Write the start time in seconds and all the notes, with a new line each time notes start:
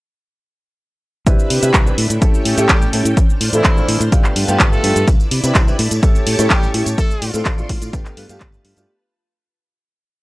1.26 C2 C4 D4 E4 G4 B4 E5, kick, closed hi-hat, shaker
1.39 shaker
1.50 C3, open hi-hat
1.62 C3 C4 D4 E4 G4 B4, closed hi-hat, shaker
1.74 C2, kick, clap, closed hi-hat, shaker
1.86 C4 D4 E4 G4 B4, shaker
1.98 A2 C#4 A4 G5, open hi-hat
2.10 A2, closed hi-hat, shaker
2.21 A1 A3 C#4 E4 G4 A4, kick, closed hi-hat, shaker
2.34 shaker
2.45 A2, open hi-hat
2.57 A2 A3 C#4 E4 G4 A4, closed hi-hat, shaker
2.69 A1 G3 G4, kick, clap, closed hi-hat, shaker
2.82 shaker
2.93 A2 A3 C#4 E4 G4 A4, open hi-hat
3.05 A2, closed hi-hat, shaker
3.17 A1 D4 C5 F6, kick, closed hi-hat, shaker
3.29 muted fingered electric bass stroke, shaker
3.41 A2, open hi-hat
3.53 A2 E3 A3 C4 D4 E4 F4 A4, closed hi-hat, shaker
3.64 A1, kick, clap, closed hi-hat, shaker
3.77 A3 C4 D4 F4 A4, shaker
3.88 A2, open hi-hat
4.00 A2, closed hi-hat, shaker
4.12 G1 A3 B3 D4 F4 G4 B4 A5, kick, closed hi-hat, shaker
4.24 muted fingered electric bass stroke, clap, shaker
4.36 G2, open hi-hat
4.48 G2 A3 B3 D4 F4 G4, closed hi-hat, shaker
4.60 G1, kick, clap, closed hi-hat, shaker
4.72 A3 A4, shaker
4.83 G2 A3 B3 D4 F4 G4, open hi-hat
4.96 G2, closed hi-hat, shaker
5.07 C2 E4 D5 B5, kick, closed hi-hat, tambourine, shaker
5.20 tambourine, shaker
5.31 C3, open hi-hat
5.43 C3 C4 D4 E4 G4 B4, closed hi-hat, tambourine, shaker
5.55 C2, kick, clap, closed hi-hat, tambourine, shaker
5.67 C4 D4 E4 G4 B4, tambourine, shaker
5.79 A2 G4 C#5 A5, open hi-hat
5.91 A2, closed hi-hat, tambourine, shaker
6.02 A1 A3 C#4 E4 G4 A4, kick, closed hi-hat, tambourine, shaker
6.15 muted fingered electric bass stroke, tambourine, shaker
6.27 A2, open hi-hat
6.38 A2 A3 C#4 E4 G4 A4, closed hi-hat, tambourine, shaker
6.50 A1 G3 G4, kick, clap, closed hi-hat, tambourine, shaker
6.63 tambourine, shaker
6.74 A2 A3 C#4 E4 G4 A4, open hi-hat
6.86 A2, closed hi-hat, tambourine, shaker
6.98 A1 A3 F4 A4 D5 C6, kick, closed hi-hat, tambourine, shaker
7.10 muted fingered electric bass stroke, tambourine, shaker
7.22 A2, open hi-hat
7.33 A2 A3 C4 D4 F4 A4, closed hi-hat, tambourine, shaker
7.45 A1, kick, clap, closed hi-hat, tambourine, shaker
7.58 A3 C4 D4 F4 A4, tambourine, shaker
7.69 A2, kick, open hi-hat
7.82 A2, closed hi-hat, tambourine, shaker
7.93 G1 A3 B3 D4 F4 G4 B4 A5, kick, closed hi-hat, tambourine, shaker
8.05 clap, closed hi-hat, tambourine, shaker
8.17 G2 A3 B3 D4 F4 B4, open hi-hat
8.29 G2 A3 B3 D4 F4 G4, closed hi-hat, tambourine, shaker
8.40 kick, clap, closed hi-hat, shaker
8.52 tambourine, shaker
8.65 G2, open hi-hat
8.76 G2 A3 B3 D4 F4 G4, closed hi-hat, tambourine, shaker